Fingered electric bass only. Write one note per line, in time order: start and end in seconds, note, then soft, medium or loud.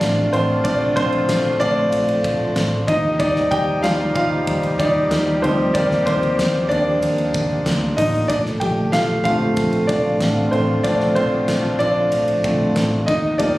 0.01 0.27 A1 medium
0.33 0.59 A1 medium
0.65 0.91 A#1 medium
0.97 1.23 A#1 medium
1.29 1.55 A#1 medium
1.61 1.87 A#1 loud
1.92 2.18 A#1 medium
2.25 2.51 A#1 medium
2.56 2.82 A1 medium
2.88 3.40 D#2 loud
3.52 3.78 D#2 medium
3.83 4.09 D#2 medium
4.16 4.42 D#2 loud
4.47 4.73 D#2 medium
4.80 5.06 D#2 medium
5.11 5.37 D#2 loud
5.43 5.69 D2 medium
5.75 6.01 D#2 loud
6.07 6.33 D#2 medium
6.39 6.65 D#2 medium
6.71 6.97 D#2 medium
7.03 7.29 D#2 medium
7.35 7.61 D#2 medium
7.66 7.92 D2 loud
7.98 8.24 A1 medium
8.30 8.56 A#1 loud
8.61 8.88 A#1 medium
8.94 9.20 A#1 medium
9.25 9.52 A#1 medium
9.57 9.83 A#1 loud
9.89 10.15 A#1 loud
10.21 10.47 A1 medium
10.52 10.79 A1 medium
10.84 11.11 A#1 loud
11.16 11.42 A#1 medium
11.48 11.75 A#1 loud
11.80 12.07 A#1 medium
12.13 12.39 A#1 medium
12.44 12.70 A#1 medium
12.77 13.02 A1 loud
13.08 13.58 D#2 medium